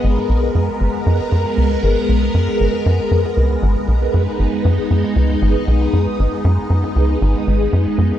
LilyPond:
<<
  \new Staff \with { instrumentName = "String machine" } { \time 4/4 \key gis \minor \tempo 4 = 117 << { ais'1~ | ais'1 | dis'1~ | dis'1 | } \\ { <gis b>1~ | <gis b>1~ | <gis b>1~ | <gis b>1 | } >> }
  \new Staff \with { instrumentName = "Analog synth bass" } { \clef bass \time 4/4 \key gis \minor gis,,16 r16 b,,8 fis,16 r16 gis,,8 fis,16 r16 fis,16 r16 cis,8 gis,,16 r16 | b,,8 fis,16 r16 gis,,8 fis,16 r16 fis,16 r16 cis,8 gis,,16 r16 b,,8 | fis,16 r16 gis,,8 fis,16 r16 fis,16 r16 cis,8 gis,,16 r16 b,,8 fis,16 r16 | gis,,8 fis,16 r16 fis,16 r16 cis,8 gis,,16 r16 gis,,8 fis,16 r16 fis,16 r16 | }
>>